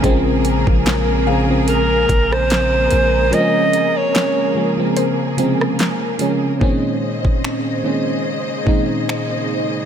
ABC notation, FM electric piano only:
X:1
M:4/4
L:1/16
Q:"Swing 16ths" 1/4=73
K:Bbm
V:1 name="FM electric piano" clef=bass
[D,F,A,C]4- [D,F,A,C] z [D,F,A,C] [D,F,A,C]6- [D,F,A,C] z2 | [D,F,A,CD]4- [D,F,A,CD] z [D,F,A,B,] [D,F,A,C]2 z [C,D,F,A,C]3 z [D,F,A,D]2 | [B,,E,A,CD]4- [B,,E,A,CD] z [B,,E,A,CD]3 z [B,,E,A,CE]4- [B,,E,A,CE] z |]